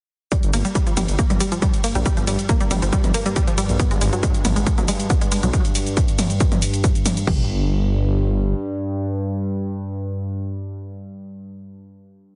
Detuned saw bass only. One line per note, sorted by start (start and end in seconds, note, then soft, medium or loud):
0.43 0.51 G1 loud
0.53 0.62 G1 loud
0.97 1.06 G1 medium
1.08 1.16 G1 medium
1.30 1.38 G1 medium
1.95 2.03 A#1 medium
2.17 2.25 G1 loud
2.27 2.36 G1 medium
2.71 2.80 G1 medium
2.82 2.90 G1 medium
3.04 3.12 G1 medium
3.69 3.77 A#1 medium
3.91 3.99 G#1 loud
4.01 4.10 G#1 medium
4.45 4.54 G#1 medium
4.56 4.64 G#1 medium
4.78 4.86 G#1 medium
5.43 5.51 B1 medium
7.27 8.54 G1 loud